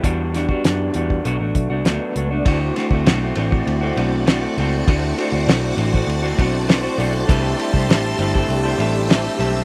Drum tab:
RD |----------------|x-x-x-x-x-x-x-x-|x-x-x-x-x-x-x-x-|x-x-x-x-x-x-x-x-|
HH |x-x-x-x-x-x-x-x-|----------------|--------------o-|p---------------|
SD |--o-o-------o---|--o-o-------o---|----o-------o---|----o-------o---|
BD |o--o---o--o-----|o--o---o--------|o------o--o-----|o--o---o--------|